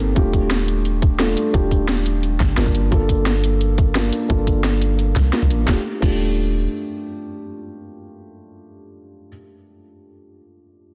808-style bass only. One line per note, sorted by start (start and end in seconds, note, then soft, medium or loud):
0.00 0.14 G1 medium
0.16 1.35 D#1 loud
1.54 2.39 D#1 loud
2.40 2.56 G1 medium
2.57 2.90 G1 medium
2.92 4.11 G1 loud
4.30 5.15 G1 loud
5.16 5.32 C2 medium
5.42 5.52 C2 loud
5.50 5.66 A1 medium
5.68 5.77 D#1 medium
6.02 6.67 D#1 medium